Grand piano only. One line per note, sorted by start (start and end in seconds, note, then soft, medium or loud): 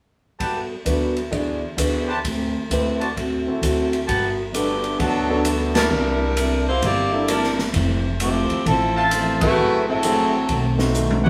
0.85 1.13 D4 soft
0.85 1.13 F#4 soft
0.85 1.13 A4 soft
0.85 1.13 B4 medium
1.31 1.59 D4 soft
1.31 1.59 F#4 soft
1.31 1.59 G#4 soft
1.31 1.60 D5 medium
1.77 2.05 D4 soft
1.77 2.05 F#4 soft
1.77 2.05 G#4 soft
1.77 2.05 B4 medium
2.71 2.98 C4 soft
2.71 2.98 E4 soft
2.71 2.98 G4 soft
2.71 2.98 B4 medium
3.47 4.05 C4 soft
3.47 4.05 E4 soft
3.47 4.05 F#4 soft
3.47 4.06 A4 soft
4.54 4.81 B3 soft
4.54 4.81 D4 soft
4.54 4.81 F#4 soft
4.54 4.81 A4 medium
5.29 5.88 B3 medium
5.29 5.88 D4 medium
5.29 5.89 F#4 medium
5.29 5.89 A4 medium
7.11 7.26 A#3 medium
7.11 7.27 D4 soft
7.11 7.26 E4 soft
7.11 7.27 A4 medium
9.42 10.01 A3 medium
9.42 10.01 C4 soft
9.42 10.01 E4 medium
9.42 10.01 G#4 medium
10.04 10.30 A3 medium
10.04 10.31 C4 medium
10.04 10.31 E4 soft
10.04 10.31 G#4 medium
10.78 11.30 A3 medium
10.78 11.30 C4 medium
10.78 11.30 D#4 medium
10.78 11.30 F#4 medium